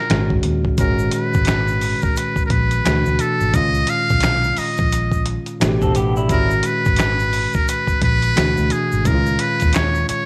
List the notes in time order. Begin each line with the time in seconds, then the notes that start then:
Already playing: A#2 D#3 G#3 C#4 F4 A#4
0.10 G#1 A#2 D#3 G#3 C#4 F4, finger snap, snare, closed hi-hat
0.18 F#4
0.30 kick
0.43 D#2, closed hi-hat
0.65 kick
0.78 G#1 A#2 D#3 G#3 C#4 F#4 A#4, kick, closed hi-hat, shaker
0.99 shaker
1.11 B4, closed hi-hat, shaker
1.34 G#1, kick, shaker
1.45 finger snap, snare, closed hi-hat, shaker
1.68 shaker
1.81 open hi-hat, shaker
2.02 A#4, kick, shaker
2.16 B4, closed hi-hat, shaker
2.36 kick, shaker
2.46 A#4
2.50 A#1 B4, kick, closed hi-hat
2.71 closed hi-hat, shaker
2.85 D2 B2 E3 A3 D4 F#4, finger snap, snare, closed hi-hat, shaker
2.87 finger snap
3.06 D2, shaker
3.19 A4, closed hi-hat, shaker
3.41 G#1, shaker
3.53 C#2 A#2 D#3 G#3 C#4 F4 D#5, kick, closed hi-hat, shaker
3.74 shaker
3.87 F5, closed hi-hat, shaker
4.09 B1, kick, shaker
4.20 finger snap, snare, closed hi-hat, shaker
4.44 shaker
4.57 D#5, muted fingered electric bass stroke, open hi-hat, shaker
4.77 A#1, kick, shaker
4.92 closed hi-hat, shaker
5.12 kick, shaker
5.26 closed hi-hat
5.46 closed hi-hat, shaker
5.60 A1 B2 E3 A3 D4 F#4, finger snap, snare, closed hi-hat, shaker
5.69 G4
5.82 C4 A4, kick, shaker
5.95 A1 B3 G4, closed hi-hat, shaker
6.16 G3 E4, shaker
6.29 G#1 A#2 D#3 G#3 C#4 F#4 A#4, kick, closed hi-hat, shaker
6.50 shaker
6.63 B4, closed hi-hat, shaker
6.85 G#1, kick, shaker
6.96 finger snap, snare, closed hi-hat, shaker
7.19 shaker
7.33 open hi-hat, shaker
7.53 A#4, kick, shaker
7.68 B4, closed hi-hat, shaker
7.87 kick, shaker
8.02 A#1 B4, kick, closed hi-hat
8.22 closed hi-hat, shaker
8.36 D2 B2 E3 A3 D4 F#4, finger snap, snare, closed hi-hat, shaker
8.38 finger snap
8.57 D2, shaker
8.70 G#4, closed hi-hat, shaker
8.92 G#1, shaker
9.04 C#2 A#2 D#3 G#3 C#4 E4 A#4, kick, closed hi-hat, shaker
9.15 F4
9.26 shaker
9.39 B4, closed hi-hat
9.60 D#2, kick, closed hi-hat, shaker
9.73 C#5, finger snap, snare, closed hi-hat, shaker
9.76 finger snap
9.95 shaker
10.09 C#5, muted fingered electric bass stroke, closed hi-hat, shaker